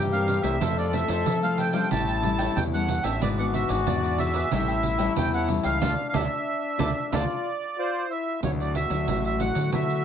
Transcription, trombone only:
Already playing: G4
0.61 A4
1.91 E4
3.21 F#4
4.52 E4
5.82 D4
7.12 F4
7.77 F4
8.09 E4
8.43 F#4

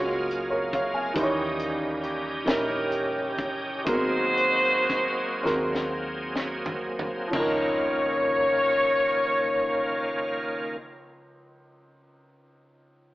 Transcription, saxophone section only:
1.16 G3 A#3 D#4
2.02 G4
2.46 C#4 G4 A#4
3.87 D#4 F#4 C5
7.34 C#5

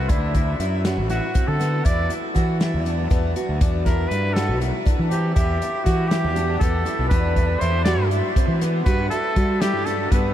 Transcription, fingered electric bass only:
0.10 D2
0.59 F#2
0.97 A1
1.48 D3
1.86 E2
2.36 E3
2.74 E2
3.11 E2
3.49 D2
3.61 E2
4.11 G2
4.49 B1
4.99 E3
5.36 E2
5.86 E3
6.24 E2
6.61 E2
6.99 B1
7.11 E2
7.61 E2
7.99 G2
8.48 E3
8.87 G2
9.36 G3
9.73 G2
10.12 G2

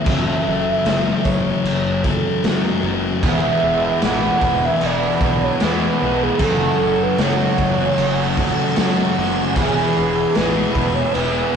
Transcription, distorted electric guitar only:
0.04 F#2 C#3 F#3
0.46 C#3 F#3
0.85 F#2 C#3 F#3
2.04 C#3 F#3
2.45 F#2 C#3 F#3
2.84 C#3 F#3
3.24 E2 B2 E3
3.64 B2 E3
4.03 E2 B2 E3
5.22 B2 E3
5.61 E2 B2 E3
6.01 B2 E3
6.40 F#2 C#3 F#3
6.80 C#3 F#3
7.19 F#2 C#3 F#3
8.39 C#3 F#3
8.77 F#2 C#3 F#3
9.18 C#3 F#3
9.57 E2 B2 E3
9.97 B2 E3
10.38 E2 B2 E3

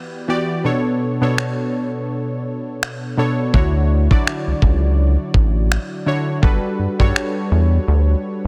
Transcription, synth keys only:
Already playing: E3 B3 F#4 G4 B4
0.28 E3 B3 F#4 G4 D5
0.64 B2 B3 D4 A4 C#5
1.21 B2 B3 D4 A4 C#5
3.17 B2 B3 D4 A4 C#5
3.53 D3 D4 E4 F#4 C#5
4.10 F#3 D4 E4 F#4 D5
6.06 D3 D4 E4 F#4 C#5
6.42 G3 D4 F#4 A4 B4
6.99 G3 D4 F#4 A4 C#5

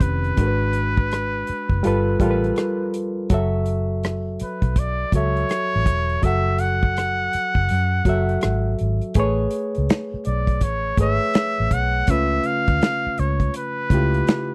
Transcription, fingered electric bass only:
0.02 F1
0.38 G#1
1.49 muted fingered electric bass stroke
1.71 F#1
1.86 G1
2.21 A1
3.31 F#1
4.41 muted fingered electric bass stroke
4.63 B1
5.14 C#2
5.76 A1
5.87 E1
6.24 F#1
7.35 muted fingered electric bass stroke
7.56 F#1
7.71 F#2
8.06 F#1
8.45 G#1
8.81 G#1
9.16 A1
9.78 C#2
10.14 muted fingered electric bass stroke
10.27 B1
10.63 A1
10.99 G#1
11.60 A1
11.72 B1
12.09 C#2
12.69 D2
13.06 muted fingered electric bass stroke
13.19 C#2
13.91 C#2

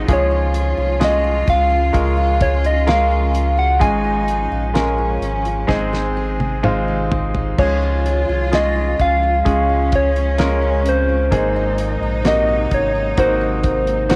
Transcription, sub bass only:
0.08 C#2
0.78 C2
1.48 C#2
1.94 C#2
3.81 G#1
4.52 A#1
5.21 G#1
5.69 G#1
7.58 C#2
8.29 C2
9.00 C#2
9.46 C#2
11.32 G#1
12.01 A#1
12.72 G#1
13.18 G#1

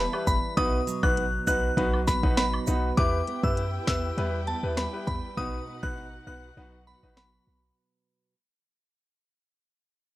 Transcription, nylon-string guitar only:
Already playing: E3 G3 B3 E4
0.27 B3
0.57 B2
0.87 F#3
1.17 B3
1.47 D#4
1.77 F#3
2.07 B3
2.37 D#4
2.67 B3
2.98 E4
3.28 B3
3.57 E4
3.88 B3
4.18 G3
4.48 B3
4.78 G3
5.08 B3
5.38 B2 D#4
5.68 B3
5.97 D#4
6.27 B3
6.57 F#3
6.87 B3
7.17 F#3
7.47 B3

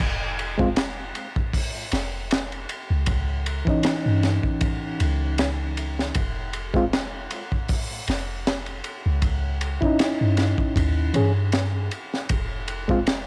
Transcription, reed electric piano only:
0.58 G#3 C4 F4
3.65 E3 C#4
3.70 D#4
6.74 G#3 C4 F4
9.81 C#4 E4
9.85 D#4
11.14 E3 C#4 G#4
12.88 G#3 C4 F4

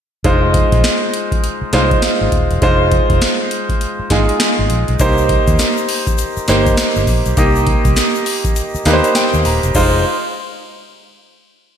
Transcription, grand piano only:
0.24 G#3 D#4 F4 C5
1.73 G#3 D#4 F4 C5
2.62 G#3 D#4 F4 C5
4.11 G#3 D#4 F4 G#4
5.00 A#3 D#4 G4 C5
6.48 A#3 D#4 G4 C5
7.37 A#3 D#4 G4 D#5
8.86 A#3 D#4 G4 B4 F5
8.93 C5
9.16 G5
9.46 A#5
9.75 G#3 D#4 F4 C5

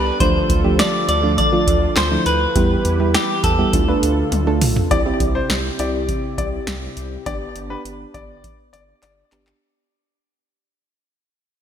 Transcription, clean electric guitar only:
Already playing: B4
0.20 C5
0.80 D5
1.09 D5
1.38 D5
1.97 C5
2.26 B4
3.15 G4
3.44 A4

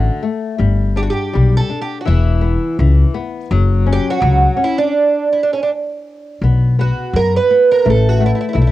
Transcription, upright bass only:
0.59 G1
1.35 B1
2.08 E1
2.79 C#2
3.51 F#1
4.22 C#2
6.41 B1
7.13 F#2
7.86 A1
8.55 B1

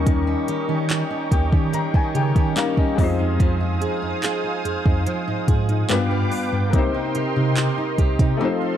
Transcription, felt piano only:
Already playing: G3 A#3 C#4 D#4 A#4
1.32 G5
1.74 A#5
1.95 G#5
2.16 G5
2.55 G3 A#3 C#4 D#4 A#4 F5
2.79 D#5
2.95 G#3 C4
2.99 D#4 F4 D#5
3.03 C5
5.89 G3 B3 D4 F4 B4
6.70 A#3 C4
6.74 D#4 G4
6.78 C5
8.37 A3 C4 D#4
8.43 F4 C5

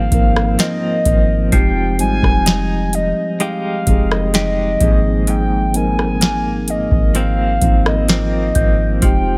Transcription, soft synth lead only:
Already playing: F5
0.60 D#5
1.54 G5
2.00 G#5
2.95 D#5
3.41 F5
4.12 D#5
4.35 D#5
5.29 G5
5.76 G#5
6.70 D#5
7.17 F5
7.87 D#5
8.11 D#5
9.04 G5

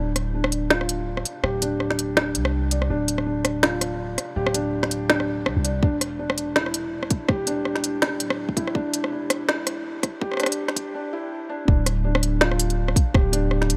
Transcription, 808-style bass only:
Already playing: D1
1.44 D1
2.35 C2
2.90 D1
4.36 D1
5.46 C2
5.56 C2
5.83 E1
7.29 E1
8.20 D1
8.75 E1
10.22 E1
11.68 D1
13.14 D1

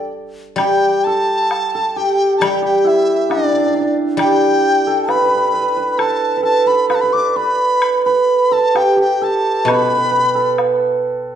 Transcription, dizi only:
Already playing: G5
0.57 G5
1.04 A5
1.97 G5
2.38 A5
2.43 G5
2.65 G5
2.88 E5
3.32 D5
4.21 G5
5.10 B5
5.93 B5
5.99 A5
6.44 A5
6.67 B5
6.90 B5
6.95 A5
7.01 B5
7.13 D6
7.36 B5
8.05 B5
8.53 A5
8.77 G5
9.01 G5
9.24 A5
9.71 B5

